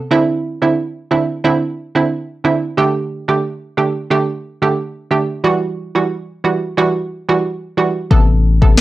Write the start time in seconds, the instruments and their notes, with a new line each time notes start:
0.11 synth pluck D3 C4 E4
0.62 synth pluck D3 C4 E4
1.11 synth pluck D3 C4 E4
1.44 synth pluck D3 C4 E4
1.95 synth pluck D3 C4 E4
2.44 synth pluck D3 C4 E4
2.77 synth pluck D3 A3 G4
3.28 synth pluck D3 A3 G4
3.77 synth pluck D3 A3 G4
4.10 synth pluck D3 A3 G4
4.62 synth pluck D3 A3 G4
5.11 synth pluck D3 A3 G4
5.44 synth pluck E3 G3 F#4
5.95 synth pluck E3 G3 F#4
6.44 synth pluck E3 G3 F#4
6.77 synth pluck E3 G3 F#4
7.29 synth pluck E3 G3 F#4
7.77 synth pluck E3 G3 F#4
8.11 sub bass A1, synth pluck C3 B3 A4, kick
8.62 synth pluck C3 B3 A4, kick
8.78 snare